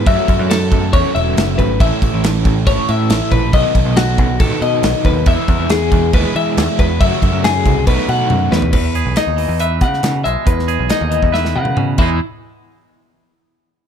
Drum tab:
CC |x-x-x-x-x-x-x-x-|x-x-x-x-x-x-x-x-|x-x-x-x-x-x-x-x-|x-x-x-x-x-x-x-x-|
HH |----------------|----------------|----------------|----------------|
SD |----o-------o---|----o-------o---|----o-------o---|----o-------o---|
T1 |----------------|----------------|----------------|----------------|
T2 |----------------|----------------|----------------|----------------|
FT |----------------|----------------|----------------|----------------|
BD |o-o---o-o-----o-|o-o---o-o-----o-|o-o---o-o-----o-|o-o---o-o-----o-|

CC |x-x-x-x-x-x-----|x---------------|--------------x-|----------------|
HH |----------------|--x-x-o-x-x-x-x-|x-x-x-x---------|----------------|
SD |----o---------o-|----o-----ooo---|-o--o---oo------|----------------|
T1 |------------o---|----------------|-----------o----|----------------|
T2 |----------------|----------------|------------o---|----------------|
FT |---------------o|----------------|----------------|----------------|
BD |o-o---o-o-------|o---------o-----|o------o------o-|----------------|